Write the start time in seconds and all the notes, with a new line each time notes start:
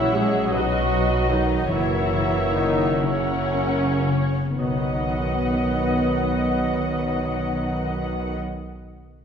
Already playing: A#1 A#2 E3 F#3 C#4 E4 C#5 E5 F#5
0.14 G#3 E4 F#4 G#4
0.50 B1 F#3 D#4 F#4 B4 D#5
0.55 B2
0.93 B3
1.30 D#3 D#4 F#4
1.69 F#1 F#2 E3 A#3 E4 A#4 C#5 E5
2.13 C#3
2.55 D#3 D#4 E4
3.01 C#3 C#4 A#4 C#5
3.05 F#5
3.52 A#3
4.07 C#3
4.55 B1 B2 D#3 B3 B4 D#5 F#5
4.59 F#3 D#4 B4 D#5
4.66 B3
4.72 D#4
4.79 F#4
4.87 D#5